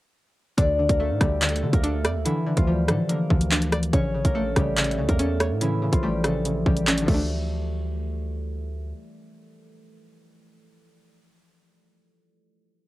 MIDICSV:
0, 0, Header, 1, 5, 480
1, 0, Start_track
1, 0, Key_signature, -1, "minor"
1, 0, Tempo, 419580
1, 660, Time_signature, 4, 2, 24, 8
1, 14729, End_track
2, 0, Start_track
2, 0, Title_t, "Harp"
2, 0, Program_c, 0, 46
2, 657, Note_on_c, 0, 74, 106
2, 665, Note_on_c, 0, 62, 75
2, 1020, Note_on_c, 0, 70, 75
2, 1029, Note_on_c, 0, 58, 54
2, 1138, Note_on_c, 0, 69, 85
2, 1147, Note_on_c, 0, 57, 69
2, 1207, Note_off_c, 0, 58, 0
2, 1207, Note_off_c, 0, 70, 0
2, 1373, Note_on_c, 0, 67, 71
2, 1383, Note_on_c, 0, 55, 66
2, 1735, Note_off_c, 0, 69, 0
2, 1739, Note_on_c, 0, 69, 89
2, 1744, Note_off_c, 0, 57, 0
2, 1748, Note_on_c, 0, 57, 66
2, 1974, Note_on_c, 0, 70, 84
2, 1982, Note_on_c, 0, 58, 67
2, 2042, Note_off_c, 0, 57, 0
2, 2042, Note_off_c, 0, 69, 0
2, 2100, Note_on_c, 0, 69, 83
2, 2109, Note_on_c, 0, 57, 71
2, 2169, Note_off_c, 0, 58, 0
2, 2169, Note_off_c, 0, 70, 0
2, 2574, Note_on_c, 0, 64, 108
2, 2584, Note_on_c, 0, 52, 78
2, 2769, Note_off_c, 0, 74, 0
2, 2944, Note_on_c, 0, 65, 75
2, 2953, Note_on_c, 0, 53, 53
2, 3013, Note_off_c, 0, 64, 0
2, 3052, Note_off_c, 0, 55, 0
2, 3052, Note_off_c, 0, 67, 0
2, 3057, Note_on_c, 0, 67, 76
2, 3066, Note_on_c, 0, 55, 58
2, 3302, Note_off_c, 0, 69, 0
2, 3306, Note_on_c, 0, 69, 76
2, 3312, Note_off_c, 0, 57, 0
2, 3316, Note_on_c, 0, 57, 55
2, 3535, Note_on_c, 0, 70, 88
2, 3544, Note_on_c, 0, 58, 71
2, 3604, Note_off_c, 0, 57, 0
2, 3604, Note_off_c, 0, 69, 0
2, 3867, Note_off_c, 0, 62, 0
2, 4498, Note_on_c, 0, 73, 99
2, 4507, Note_on_c, 0, 61, 78
2, 4558, Note_off_c, 0, 52, 0
2, 4558, Note_off_c, 0, 53, 0
2, 4558, Note_off_c, 0, 55, 0
2, 4864, Note_off_c, 0, 70, 0
2, 4869, Note_on_c, 0, 70, 76
2, 4873, Note_off_c, 0, 58, 0
2, 4878, Note_on_c, 0, 58, 58
2, 4973, Note_on_c, 0, 69, 91
2, 4983, Note_on_c, 0, 57, 73
2, 5041, Note_off_c, 0, 58, 0
2, 5041, Note_off_c, 0, 70, 0
2, 5212, Note_off_c, 0, 67, 0
2, 5217, Note_on_c, 0, 67, 80
2, 5226, Note_on_c, 0, 55, 64
2, 5582, Note_off_c, 0, 69, 0
2, 5587, Note_on_c, 0, 69, 80
2, 5591, Note_off_c, 0, 57, 0
2, 5596, Note_on_c, 0, 57, 65
2, 5823, Note_on_c, 0, 70, 80
2, 5830, Note_off_c, 0, 65, 0
2, 5833, Note_on_c, 0, 58, 66
2, 5892, Note_off_c, 0, 57, 0
2, 5892, Note_off_c, 0, 69, 0
2, 5946, Note_on_c, 0, 69, 88
2, 5955, Note_on_c, 0, 57, 65
2, 6014, Note_off_c, 0, 58, 0
2, 6014, Note_off_c, 0, 70, 0
2, 6424, Note_on_c, 0, 64, 102
2, 6433, Note_on_c, 0, 52, 80
2, 6685, Note_off_c, 0, 73, 0
2, 6771, Note_on_c, 0, 65, 70
2, 6779, Note_on_c, 0, 53, 51
2, 6840, Note_off_c, 0, 64, 0
2, 6896, Note_off_c, 0, 55, 0
2, 6896, Note_off_c, 0, 67, 0
2, 6901, Note_on_c, 0, 67, 79
2, 6910, Note_on_c, 0, 55, 66
2, 7138, Note_off_c, 0, 69, 0
2, 7143, Note_on_c, 0, 69, 84
2, 7147, Note_off_c, 0, 57, 0
2, 7152, Note_on_c, 0, 57, 69
2, 7617, Note_off_c, 0, 67, 0
2, 7618, Note_off_c, 0, 55, 0
2, 7622, Note_on_c, 0, 67, 88
2, 7631, Note_on_c, 0, 55, 63
2, 7822, Note_off_c, 0, 61, 0
2, 7857, Note_off_c, 0, 69, 0
2, 7861, Note_on_c, 0, 69, 90
2, 7866, Note_off_c, 0, 57, 0
2, 7870, Note_on_c, 0, 57, 65
2, 8097, Note_off_c, 0, 57, 0
2, 8102, Note_on_c, 0, 57, 87
2, 8158, Note_off_c, 0, 52, 0
2, 8158, Note_off_c, 0, 53, 0
2, 8158, Note_off_c, 0, 55, 0
2, 9657, Note_off_c, 0, 65, 0
2, 10315, Note_off_c, 0, 67, 0
2, 10374, Note_off_c, 0, 69, 0
2, 11910, Note_off_c, 0, 57, 0
2, 14729, End_track
3, 0, Start_track
3, 0, Title_t, "Synth pluck"
3, 0, Program_c, 1, 84
3, 661, Note_on_c, 1, 50, 89
3, 890, Note_off_c, 1, 50, 0
3, 904, Note_on_c, 1, 50, 71
3, 1142, Note_on_c, 1, 57, 76
3, 1367, Note_off_c, 1, 50, 0
3, 1381, Note_on_c, 1, 50, 91
3, 1604, Note_off_c, 1, 50, 0
3, 1617, Note_on_c, 1, 50, 74
3, 1848, Note_off_c, 1, 50, 0
3, 1861, Note_on_c, 1, 50, 78
3, 2099, Note_on_c, 1, 62, 100
3, 2341, Note_off_c, 1, 57, 0
3, 2344, Note_on_c, 1, 74, 84
3, 2570, Note_off_c, 1, 50, 0
3, 2584, Note_on_c, 1, 50, 92
3, 2807, Note_off_c, 1, 50, 0
3, 2821, Note_on_c, 1, 50, 79
3, 3060, Note_on_c, 1, 53, 78
3, 3291, Note_off_c, 1, 50, 0
3, 3300, Note_off_c, 1, 62, 0
3, 3304, Note_on_c, 1, 50, 92
3, 3523, Note_off_c, 1, 50, 0
3, 3537, Note_on_c, 1, 50, 76
3, 3542, Note_off_c, 1, 74, 0
3, 3769, Note_off_c, 1, 50, 0
3, 3782, Note_on_c, 1, 50, 79
3, 4021, Note_on_c, 1, 62, 97
3, 4259, Note_on_c, 1, 74, 83
3, 4260, Note_off_c, 1, 53, 0
3, 4497, Note_on_c, 1, 49, 91
3, 4500, Note_off_c, 1, 74, 0
3, 4501, Note_off_c, 1, 50, 0
3, 4501, Note_off_c, 1, 62, 0
3, 4729, Note_off_c, 1, 49, 0
3, 4743, Note_on_c, 1, 49, 73
3, 4977, Note_on_c, 1, 57, 77
3, 5208, Note_off_c, 1, 49, 0
3, 5222, Note_on_c, 1, 49, 93
3, 5445, Note_off_c, 1, 49, 0
3, 5459, Note_on_c, 1, 49, 76
3, 5682, Note_off_c, 1, 49, 0
3, 5696, Note_on_c, 1, 49, 79
3, 5940, Note_on_c, 1, 61, 98
3, 6178, Note_on_c, 1, 73, 79
3, 6179, Note_off_c, 1, 57, 0
3, 6405, Note_off_c, 1, 49, 0
3, 6419, Note_on_c, 1, 49, 91
3, 6646, Note_off_c, 1, 49, 0
3, 6660, Note_on_c, 1, 49, 77
3, 6898, Note_on_c, 1, 57, 78
3, 7128, Note_off_c, 1, 49, 0
3, 7140, Note_off_c, 1, 61, 0
3, 7142, Note_on_c, 1, 49, 89
3, 7366, Note_off_c, 1, 49, 0
3, 7379, Note_off_c, 1, 73, 0
3, 7380, Note_on_c, 1, 49, 73
3, 7607, Note_off_c, 1, 49, 0
3, 7621, Note_on_c, 1, 49, 77
3, 7858, Note_on_c, 1, 61, 97
3, 8032, Note_on_c, 1, 50, 87
3, 8078, Note_on_c, 1, 53, 80
3, 8099, Note_off_c, 1, 57, 0
3, 8099, Note_off_c, 1, 61, 0
3, 8101, Note_off_c, 1, 49, 0
3, 8124, Note_on_c, 1, 57, 78
3, 8169, Note_on_c, 1, 62, 94
3, 13370, Note_off_c, 1, 50, 0
3, 13415, Note_off_c, 1, 53, 0
3, 13461, Note_off_c, 1, 57, 0
3, 13507, Note_off_c, 1, 62, 0
3, 14729, End_track
4, 0, Start_track
4, 0, Title_t, "808-style bass"
4, 0, Program_c, 2, 38
4, 660, Note_on_c, 2, 38, 114
4, 1006, Note_off_c, 2, 38, 0
4, 1021, Note_on_c, 2, 38, 112
4, 1260, Note_on_c, 2, 45, 99
4, 1278, Note_off_c, 2, 38, 0
4, 1374, Note_off_c, 2, 45, 0
4, 1381, Note_on_c, 2, 38, 105
4, 1861, Note_on_c, 2, 50, 100
4, 1879, Note_off_c, 2, 38, 0
4, 1975, Note_off_c, 2, 50, 0
4, 1981, Note_on_c, 2, 38, 107
4, 2340, Note_on_c, 2, 41, 102
4, 2357, Note_off_c, 2, 38, 0
4, 2460, Note_on_c, 2, 38, 102
4, 2477, Note_off_c, 2, 41, 0
4, 2574, Note_off_c, 2, 38, 0
4, 2941, Note_on_c, 2, 38, 113
4, 3301, Note_on_c, 2, 45, 98
4, 3318, Note_off_c, 2, 38, 0
4, 3415, Note_off_c, 2, 45, 0
4, 3781, Note_on_c, 2, 38, 109
4, 4472, Note_off_c, 2, 38, 0
4, 4501, Note_on_c, 2, 33, 112
4, 4846, Note_off_c, 2, 33, 0
4, 4861, Note_on_c, 2, 33, 104
4, 5206, Note_off_c, 2, 33, 0
4, 5221, Note_on_c, 2, 33, 111
4, 5701, Note_on_c, 2, 37, 99
4, 5718, Note_off_c, 2, 33, 0
4, 5815, Note_off_c, 2, 37, 0
4, 5820, Note_on_c, 2, 40, 106
4, 6301, Note_on_c, 2, 45, 102
4, 6318, Note_off_c, 2, 40, 0
4, 6757, Note_off_c, 2, 45, 0
4, 6780, Note_on_c, 2, 33, 110
4, 7260, Note_on_c, 2, 34, 101
4, 7277, Note_off_c, 2, 33, 0
4, 7602, Note_off_c, 2, 34, 0
4, 7621, Note_on_c, 2, 33, 104
4, 8081, Note_off_c, 2, 33, 0
4, 8101, Note_on_c, 2, 38, 112
4, 10215, Note_off_c, 2, 38, 0
4, 14729, End_track
5, 0, Start_track
5, 0, Title_t, "Drums"
5, 660, Note_on_c, 9, 36, 116
5, 660, Note_on_c, 9, 42, 85
5, 775, Note_off_c, 9, 36, 0
5, 775, Note_off_c, 9, 42, 0
5, 1020, Note_on_c, 9, 42, 85
5, 1021, Note_on_c, 9, 36, 88
5, 1135, Note_off_c, 9, 36, 0
5, 1135, Note_off_c, 9, 42, 0
5, 1380, Note_on_c, 9, 36, 93
5, 1380, Note_on_c, 9, 37, 104
5, 1381, Note_on_c, 9, 42, 82
5, 1494, Note_off_c, 9, 37, 0
5, 1495, Note_off_c, 9, 36, 0
5, 1495, Note_off_c, 9, 42, 0
5, 1620, Note_on_c, 9, 39, 112
5, 1620, Note_on_c, 9, 42, 84
5, 1701, Note_off_c, 9, 42, 0
5, 1701, Note_on_c, 9, 42, 64
5, 1735, Note_off_c, 9, 39, 0
5, 1781, Note_off_c, 9, 42, 0
5, 1781, Note_on_c, 9, 42, 49
5, 1895, Note_off_c, 9, 42, 0
5, 1981, Note_on_c, 9, 36, 94
5, 1981, Note_on_c, 9, 42, 76
5, 2095, Note_off_c, 9, 36, 0
5, 2095, Note_off_c, 9, 42, 0
5, 2101, Note_on_c, 9, 42, 80
5, 2216, Note_off_c, 9, 42, 0
5, 2341, Note_on_c, 9, 42, 80
5, 2342, Note_on_c, 9, 37, 104
5, 2456, Note_off_c, 9, 37, 0
5, 2456, Note_off_c, 9, 42, 0
5, 2581, Note_on_c, 9, 42, 89
5, 2696, Note_off_c, 9, 42, 0
5, 2941, Note_on_c, 9, 36, 87
5, 2941, Note_on_c, 9, 42, 83
5, 3055, Note_off_c, 9, 36, 0
5, 3056, Note_off_c, 9, 42, 0
5, 3301, Note_on_c, 9, 37, 101
5, 3301, Note_on_c, 9, 42, 82
5, 3415, Note_off_c, 9, 37, 0
5, 3416, Note_off_c, 9, 42, 0
5, 3541, Note_on_c, 9, 42, 79
5, 3656, Note_off_c, 9, 42, 0
5, 3781, Note_on_c, 9, 36, 103
5, 3896, Note_off_c, 9, 36, 0
5, 3902, Note_on_c, 9, 42, 79
5, 4016, Note_off_c, 9, 42, 0
5, 4021, Note_on_c, 9, 39, 118
5, 4136, Note_off_c, 9, 39, 0
5, 4141, Note_on_c, 9, 42, 81
5, 4256, Note_off_c, 9, 42, 0
5, 4261, Note_on_c, 9, 42, 77
5, 4262, Note_on_c, 9, 37, 104
5, 4376, Note_off_c, 9, 37, 0
5, 4376, Note_off_c, 9, 42, 0
5, 4381, Note_on_c, 9, 42, 84
5, 4496, Note_off_c, 9, 42, 0
5, 4501, Note_on_c, 9, 36, 112
5, 4501, Note_on_c, 9, 42, 84
5, 4615, Note_off_c, 9, 36, 0
5, 4615, Note_off_c, 9, 42, 0
5, 4861, Note_on_c, 9, 36, 88
5, 4861, Note_on_c, 9, 42, 86
5, 4975, Note_off_c, 9, 36, 0
5, 4975, Note_off_c, 9, 42, 0
5, 5220, Note_on_c, 9, 37, 101
5, 5221, Note_on_c, 9, 36, 89
5, 5221, Note_on_c, 9, 42, 83
5, 5334, Note_off_c, 9, 37, 0
5, 5335, Note_off_c, 9, 36, 0
5, 5335, Note_off_c, 9, 42, 0
5, 5461, Note_on_c, 9, 39, 110
5, 5461, Note_on_c, 9, 42, 82
5, 5541, Note_off_c, 9, 42, 0
5, 5541, Note_on_c, 9, 42, 65
5, 5575, Note_off_c, 9, 39, 0
5, 5620, Note_off_c, 9, 42, 0
5, 5620, Note_on_c, 9, 42, 49
5, 5735, Note_off_c, 9, 42, 0
5, 5820, Note_on_c, 9, 36, 91
5, 5820, Note_on_c, 9, 42, 77
5, 5934, Note_off_c, 9, 42, 0
5, 5935, Note_off_c, 9, 36, 0
5, 5940, Note_on_c, 9, 42, 84
5, 6055, Note_off_c, 9, 42, 0
5, 6180, Note_on_c, 9, 42, 81
5, 6181, Note_on_c, 9, 37, 104
5, 6295, Note_off_c, 9, 37, 0
5, 6295, Note_off_c, 9, 42, 0
5, 6420, Note_on_c, 9, 42, 85
5, 6534, Note_off_c, 9, 42, 0
5, 6780, Note_on_c, 9, 36, 87
5, 6780, Note_on_c, 9, 42, 86
5, 6895, Note_off_c, 9, 36, 0
5, 6895, Note_off_c, 9, 42, 0
5, 7139, Note_on_c, 9, 37, 101
5, 7140, Note_on_c, 9, 42, 83
5, 7254, Note_off_c, 9, 37, 0
5, 7255, Note_off_c, 9, 42, 0
5, 7381, Note_on_c, 9, 42, 77
5, 7495, Note_off_c, 9, 42, 0
5, 7621, Note_on_c, 9, 36, 104
5, 7735, Note_off_c, 9, 36, 0
5, 7740, Note_on_c, 9, 42, 76
5, 7855, Note_off_c, 9, 42, 0
5, 7860, Note_on_c, 9, 39, 120
5, 7975, Note_off_c, 9, 39, 0
5, 7981, Note_on_c, 9, 42, 79
5, 8095, Note_off_c, 9, 42, 0
5, 8101, Note_on_c, 9, 36, 109
5, 8101, Note_on_c, 9, 49, 93
5, 8215, Note_off_c, 9, 36, 0
5, 8215, Note_off_c, 9, 49, 0
5, 14729, End_track
0, 0, End_of_file